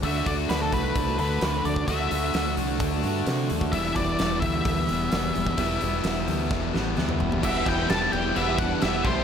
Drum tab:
CC |----------------|----------------|----------------|----------------|
HH |o-o-o-o-o-o-o-o-|o-o-o-o-o-o-o-o-|o-o-o-o-o-o-o-o-|o-o-o-o---------|
SD |----o-o-----o---|----o-------o---|----o-------o---|----o-o-o-o-o---|
T2 |----------------|----------------|----------------|-------------o--|
FT |----------------|----------------|----------------|--------------oo|
BD |o-o---o-o------o|o-------o------o|o-o---o-o------o|o-------o-------|

CC |x-x-x-x-x-x-x-x-|
HH |----------------|
SD |----o-------o---|
T2 |----------------|
FT |----------------|
BD |o-o-------o---o-|